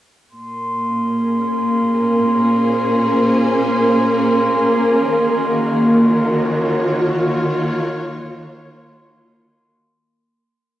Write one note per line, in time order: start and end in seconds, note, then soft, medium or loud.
0.29 5.01 A#2 medium
0.29 9.83 A#3 medium
0.29 9.83 A#4 medium
0.29 9.73 C6 medium
0.74 9.73 A#3 medium
0.86 6.90 C#4 medium
1.06 6.91 G#4 medium
2.44 5.02 C5 medium
4.99 9.71 D#3 medium
5.34 9.70 F#4 medium
5.72 9.71 C#5 medium
5.97 9.71 F4 medium